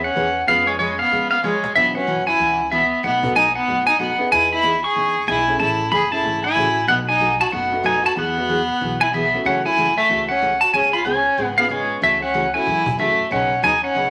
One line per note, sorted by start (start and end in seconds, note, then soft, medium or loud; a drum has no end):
0.00 0.11 D#2 medium
0.00 0.44 C#4 medium
0.04 0.48 F#5 medium
0.14 0.43 E2 medium
0.14 0.27 E3 medium
0.14 0.27 B3 medium
0.14 0.33 C#4 medium
0.14 0.27 C#4 medium
0.14 0.33 E4 medium
0.14 0.33 G#4 medium
0.14 0.27 G#4 medium
0.14 0.33 B4 medium
0.14 cajon slap soft
0.47 0.99 F2 medium
0.47 0.68 F3 medium
0.47 0.68 G#3 soft
0.47 0.66 B3 medium
0.47 1.36 C#4 medium
0.47 0.68 C#4 soft
0.47 1.36 F4 medium
0.47 0.68 F4 medium
0.47 1.36 G#4 medium
0.47 1.36 B4 medium
0.47 0.68 B4 medium
0.47 0.68 F5 loud
0.47 cajon slap soft
0.67 0.78 G#3 medium
0.67 0.78 C#5 medium
0.78 0.91 F3 medium
0.78 0.97 G#3 medium
0.78 0.91 G#3 medium
0.78 0.91 C#4 medium
0.78 0.91 F4 medium
0.78 0.91 B4 medium
0.78 1.00 C#5 medium
0.78 cajon slap soft
0.99 1.29 B3 medium
0.99 1.30 F5 medium
0.99 cajon slap soft
1.11 1.63 C#3 medium
1.11 1.32 F3 medium
1.11 1.32 G#3 medium
1.11 1.32 C#4 medium
1.11 1.32 F4 medium
1.11 1.33 B4 medium
1.11 cajon slap soft
1.31 1.43 B3 medium
1.31 1.43 F5 medium
1.44 1.55 F3 medium
1.44 1.55 G#3 medium
1.44 1.74 G#3 medium
1.44 1.55 C#4 medium
1.44 1.55 F4 medium
1.44 1.55 B4 medium
1.44 1.75 C#5 medium
1.44 cajon slap soft
1.64 cajon slap medium
1.75 2.27 F#2 medium
1.75 1.96 B2 medium
1.75 1.96 E3 medium
1.75 1.96 B3 medium
1.75 1.97 B3 medium
1.75 1.96 C#4 medium
1.75 1.93 D4 medium
1.75 1.93 F4 soft
1.75 1.97 F#4 medium
1.75 1.93 G4 medium
1.75 1.94 C5 medium
1.75 1.94 E5 medium
1.75 cajon slap soft
1.94 2.64 C#4 medium
1.94 2.27 C#4 medium
1.94 2.64 E4 medium
1.94 2.64 F#4 medium
1.94 2.64 B4 medium
1.94 2.27 F#5 medium
2.07 2.19 B2 medium
2.07 2.19 E3 medium
2.07 2.19 B3 medium
2.07 2.19 C#4 medium
2.07 2.19 F#4 medium
2.07 cajon slap soft
2.27 2.69 E4 medium
2.27 2.73 G#5 medium
2.27 cajon slap soft
2.39 2.91 C#2 medium
2.39 2.60 B2 medium
2.39 2.60 E3 medium
2.39 2.60 B3 medium
2.39 2.60 C#4 medium
2.39 2.60 F#4 medium
2.39 cajon slap soft
2.71 2.83 B2 medium
2.71 2.83 E3 medium
2.71 3.02 B3 medium
2.71 2.83 B3 medium
2.71 2.83 C#4 medium
2.71 2.83 F#4 medium
2.71 3.05 E5 medium
2.71 cajon slap soft
3.03 3.55 B1 medium
3.03 3.24 B2 soft
3.03 3.24 F#3 medium
3.03 3.24 A3 medium
3.03 3.34 B3 medium
3.03 3.24 D#4 medium
3.03 3.24 F#4 medium
3.03 3.36 F#5 medium
3.03 cajon slap soft
3.23 3.34 B3 medium
3.23 3.34 D#4 medium
3.23 3.35 F#4 medium
3.23 3.35 A4 medium
3.23 cajon bass medium
3.35 3.47 B2 medium
3.35 3.47 F#3 medium
3.35 3.47 A3 medium
3.35 3.47 D#4 medium
3.35 3.57 D#4 medium
3.35 3.47 F#4 medium
3.35 3.55 G#5 medium
3.35 cajon slap soft
3.55 3.86 B3 medium
3.55 3.86 F#5 loud
3.55 cajon slap soft
3.67 4.19 F#1 medium
3.67 3.88 B2 medium
3.67 3.88 F#3 medium
3.67 3.88 A3 medium
3.67 3.88 D#4 medium
3.67 3.89 F#4 medium
3.67 cajon slap soft
3.87 3.99 D#4 medium
3.87 3.99 G#5 medium
3.99 4.11 B2 medium
3.99 4.11 F#3 medium
3.99 4.11 A3 medium
3.99 4.30 B3 medium
3.99 4.11 D#4 medium
3.99 4.11 F#4 medium
3.99 4.30 F#5 medium
3.99 cajon slap soft
4.18 4.61 B3 medium
4.18 4.61 D#4 medium
4.18 4.61 E4 medium
4.18 4.61 G#4 medium
4.18 cajon slap soft
4.31 4.84 E2 medium
4.31 4.52 E3 medium
4.31 4.52 B3 medium
4.31 4.53 D#4 medium
4.31 4.52 E4 medium
4.31 4.53 G#4 medium
4.31 4.50 G#5 loud
4.31 cajon slap soft
4.52 4.83 E4 medium
4.52 4.84 B5 medium
4.63 4.74 E3 medium
4.63 4.75 B3 medium
4.63 4.75 D#4 medium
4.63 4.75 G#4 medium
4.63 cajon slap soft
4.84 5.25 G#4 medium
4.84 5.25 C#6 loud
4.95 5.23 C#2 medium
4.95 5.16 E3 medium
4.95 5.16 B3 medium
4.95 5.16 D#4 medium
4.95 5.17 G#4 medium
4.95 cajon slap soft
5.27 5.56 B1 medium
5.27 5.39 E3 medium
5.27 5.39 B3 medium
5.27 5.39 D#4 medium
5.27 5.59 E4 medium
5.27 5.39 G#4 medium
5.27 5.59 G#5 medium
5.27 cajon slap soft
5.48 5.90 A3 medium
5.48 5.90 C#4 medium
5.48 5.90 E4 medium
5.48 5.90 G#4 medium
5.48 cajon slap soft
5.59 5.86 A1 medium
5.59 5.80 C#3 medium
5.59 5.80 E3 medium
5.59 5.80 A3 medium
5.59 5.80 C#4 medium
5.59 5.91 E4 medium
5.59 5.81 G#4 medium
5.59 5.91 A5 loud
5.59 cajon slap soft
5.91 6.19 F#1 medium
5.91 6.03 C#3 medium
5.91 6.03 E3 medium
5.91 6.03 A3 medium
5.91 6.03 C#4 medium
5.91 6.03 G#4 medium
5.91 6.11 G#4 medium
5.91 6.11 B5 medium
5.91 cajon slap soft
6.12 6.23 A3 medium
6.12 6.23 C#4 medium
6.12 6.23 E4 medium
6.12 6.42 E4 medium
6.12 6.23 G#4 medium
6.12 6.42 A5 loud
6.12 cajon slap soft
6.23 6.52 G#1 medium
6.23 6.44 C#3 medium
6.23 6.44 E3 medium
6.23 6.44 A3 medium
6.23 6.44 C#4 medium
6.23 6.45 G#4 medium
6.23 cajon slap soft
6.44 6.86 E4 medium
6.44 6.85 G#5 loud
6.55 6.84 A1 medium
6.55 6.67 C#3 medium
6.55 6.67 E3 medium
6.55 6.67 A3 medium
6.55 6.74 A3 medium
6.55 6.67 C#4 medium
6.55 6.74 C#4 medium
6.55 6.74 E4 medium
6.55 6.74 F#4 medium
6.55 6.67 G#4 medium
6.55 cajon slap soft
6.76 cajon slap soft
6.87 7.40 B1 medium
6.87 7.08 B2 medium
6.87 7.08 F#3 medium
6.87 7.09 A3 medium
6.87 6.98 B3 medium
6.87 7.08 D#4 medium
6.87 7.09 F#4 medium
6.87 6.94 F#5 loud
6.87 cajon slap soft
7.09 7.38 D#4 medium
7.09 7.40 G#5 medium
7.20 7.31 B2 medium
7.20 7.31 F#3 medium
7.20 7.32 A3 medium
7.20 7.32 D#4 medium
7.20 7.32 F#4 medium
7.20 cajon slap soft
7.40 7.52 F#4 medium
7.40 7.52 A5 medium
7.40 cajon slap soft
7.52 8.04 F#1 medium
7.52 7.73 B2 medium
7.52 7.73 F#3 medium
7.52 7.73 A3 medium
7.52 7.83 B3 medium
7.52 7.73 D#4 medium
7.52 7.73 F#4 medium
7.52 7.82 F#5 loud
7.52 cajon slap soft
7.71 8.14 A3 medium
7.71 8.14 B3 medium
7.71 8.14 D#4 medium
7.71 8.14 F#4 medium
7.83 7.95 B2 medium
7.83 7.95 F#3 medium
7.83 7.96 A3 medium
7.83 7.95 D#4 medium
7.83 8.03 D#4 medium
7.83 7.96 F#4 medium
7.83 8.05 G#5 medium
7.83 cajon slap soft
8.04 8.16 F#4 medium
8.04 8.18 A5 medium
8.04 cajon slap soft
8.16 8.68 E2 medium
8.16 8.37 E3 medium
8.16 8.37 F#3 medium
8.16 8.37 B3 medium
8.16 8.97 B3 medium
8.16 8.37 E4 medium
8.16 8.37 G#4 medium
8.16 9.01 F#5 medium
8.16 cajon slap soft
8.37 8.48 G#3 medium
8.37 8.48 B3 medium
8.37 8.48 E4 medium
8.37 8.48 F#4 medium
8.49 8.60 E3 medium
8.49 8.60 F#3 medium
8.49 8.60 B3 medium
8.49 8.60 E4 medium
8.49 8.60 G#4 medium
8.49 cajon slap soft
8.69 cajon slap soft
8.81 9.33 B1 medium
8.81 9.01 E3 medium
8.81 9.02 F#3 medium
8.81 9.02 B3 medium
8.81 9.02 E4 medium
8.81 9.02 G#4 medium
8.81 cajon slap soft
9.01 9.12 E4 medium
9.01 9.14 G#5 medium
9.13 9.24 E3 medium
9.13 9.24 F#3 medium
9.13 9.43 B3 medium
9.13 9.25 B3 medium
9.13 9.25 E4 medium
9.13 9.25 G#4 medium
9.13 9.47 E5 medium
9.13 cajon slap soft
9.34 9.75 A3 medium
9.34 9.75 C#4 medium
9.34 9.75 E4 medium
9.34 9.76 F#4 medium
9.34 cajon slap soft
9.45 9.97 F#2 medium
9.45 9.66 C#3 medium
9.45 9.66 E3 soft
9.45 9.66 A3 medium
9.45 9.63 C#4 medium
9.45 9.66 C#4 medium
9.45 9.66 F#4 medium
9.45 9.65 F#5 medium
9.45 cajon slap soft
9.65 9.95 E4 medium
9.65 9.98 G#5 medium
9.77 9.88 C#3 medium
9.77 9.89 E3 medium
9.77 9.89 A3 medium
9.77 9.89 C#4 medium
9.77 9.89 F#4 medium
9.77 cajon slap soft
9.97 10.27 A3 medium
9.97 10.30 E5 medium
9.97 cajon slap soft
10.10 10.61 C#2 medium
10.10 10.30 C#3 medium
10.10 10.30 E3 medium
10.10 10.30 A3 medium
10.10 10.31 C#4 medium
10.10 10.31 F#4 medium
10.10 cajon slap soft
10.29 10.59 C#4 medium
10.29 10.62 F#5 medium
10.42 10.53 C#3 medium
10.42 10.53 E3 medium
10.42 10.53 A3 medium
10.42 10.53 C#4 medium
10.42 10.53 F#4 medium
10.42 cajon slap soft
10.61 10.75 F#4 medium
10.61 10.73 A5 medium
10.61 cajon slap soft
10.73 11.25 C#2 medium
10.73 10.94 C#3 medium
10.73 10.94 G#3 medium
10.73 10.94 B3 medium
10.73 10.93 C#4 medium
10.73 10.95 F4 medium
10.73 10.95 G#4 medium
10.73 10.94 G#5 loud
10.73 cajon slap soft
10.93 11.05 F4 medium
10.93 11.04 B5 medium
11.05 11.17 C#3 medium
11.05 11.17 G#3 medium
11.05 11.17 B3 medium
11.05 11.54 C#4 medium
11.05 11.17 F4 medium
11.05 11.17 G#4 medium
11.05 11.53 G#5 medium
11.05 cajon slap soft
11.25 cajon slap soft
11.37 11.89 G#1 medium
11.37 11.58 C#3 medium
11.37 11.58 G#3 medium
11.37 11.58 B3 medium
11.37 11.58 F4 medium
11.37 11.59 G#4 medium
11.37 cajon slap soft
11.57 12.00 B3 medium
11.57 11.69 B3 medium
11.57 12.00 C#4 medium
11.57 12.00 F4 medium
11.57 12.00 G#4 medium
11.57 11.69 F5 medium
11.69 11.81 C#3 medium
11.69 11.81 G#3 medium
11.69 12.00 G#3 medium
11.69 11.81 B3 medium
11.69 11.81 F4 medium
11.69 11.81 G#4 medium
11.69 12.01 C#5 medium
11.69 cajon slap soft
11.90 cajon slap soft
12.01 12.53 C#2 medium
12.01 12.22 C#3 medium
12.01 12.22 E3 medium
12.01 12.22 A3 medium
12.01 12.21 A3 medium
12.01 12.23 C#4 medium
12.01 12.23 F#4 medium
12.01 12.23 E5 loud
12.01 cajon slap soft
12.21 12.51 C#4 medium
12.21 12.54 F#5 medium
12.34 12.45 C#3 medium
12.34 12.45 E3 medium
12.34 12.45 A3 medium
12.34 12.45 C#4 medium
12.34 12.45 F#4 medium
12.34 cajon slap soft
12.54 12.65 A3 medium
12.54 12.65 C#4 medium
12.54 12.96 E4 medium
12.54 12.66 E4 medium
12.54 12.66 F#4 medium
12.54 12.95 G#5 medium
12.54 cajon slap soft
12.66 13.18 F#2 medium
12.66 12.87 C#3 medium
12.66 12.87 E3 medium
12.66 12.87 A3 medium
12.66 12.87 C#4 medium
12.66 12.87 F#4 medium
12.66 cajon slap soft
12.86 cajon bass medium
12.98 13.09 C#3 medium
12.98 13.10 E3 medium
12.98 13.10 A3 medium
12.98 13.29 A3 medium
12.98 13.17 A3 medium
12.98 13.16 C#4 medium
12.98 13.10 C#4 medium
12.98 13.17 E4 medium
12.98 13.10 F#4 medium
12.98 13.17 F#4 medium
12.98 13.32 E5 medium
12.98 cajon slap soft
13.18 cajon slap soft
13.31 13.56 B1 medium
13.31 13.51 B2 soft
13.31 13.51 C#3 medium
13.31 13.51 F#3 medium
13.31 13.51 B3 medium
13.31 13.61 C#4 medium
13.31 13.51 D#4 medium
13.31 13.52 B4 medium
13.31 13.61 F#5 medium
13.31 cajon slap soft
13.63 13.90 D#2 medium
13.63 13.74 B2 medium
13.63 13.74 C#3 medium
13.63 13.74 F#3 medium
13.63 13.74 B3 medium
13.63 13.74 D#4 medium
13.63 13.84 D#4 medium
13.63 13.74 B4 medium
13.63 13.83 G#5 medium
13.63 cajon slap soft
13.83 14.10 C#4 medium
13.83 14.10 F#5 medium
13.95 14.10 C#2 medium
13.95 14.10 B2 medium
13.95 14.10 C#3 medium
13.95 14.10 F#3 medium
13.95 14.10 B3 medium
13.95 14.10 D#4 medium
13.95 14.10 B4 medium
13.95 cajon slap soft